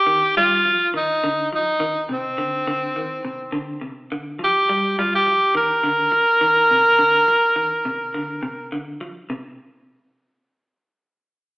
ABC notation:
X:1
M:4/4
L:1/16
Q:"Swing 16ths" 1/4=104
K:Cm
V:1 name="Tenor saxophone"
G2 F4 E4 E4 C2- | C8- C2 z4 G2- | G2 F G3 B8- B2- | B12 z4 |
z16 |]
V:2 name="Clean electric guitar" clef=bass
E,2 G,2 F,2 E,2 D,2 F,2 E,2 C,2 | D,2 D,2 E,2 C,2 D,2 C,2 D,2 F,2 | G,2 G,2 F,2 E,2 D,2 z2 E,2 C,2 | D,2 z2 E,2 C,2 D,2 C,2 D,2 F,2 |
C,2 z12 z2 |]